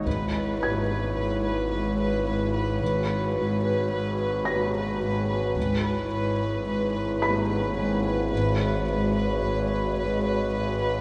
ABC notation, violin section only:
X:1
M:5/4
L:1/8
Q:1/4=109
K:C#dor
V:1 name="Violin section"
B B B B B B B B B B | B B B B B B B B B B | B B B B B B B B B B | B B B B B B B B B B |]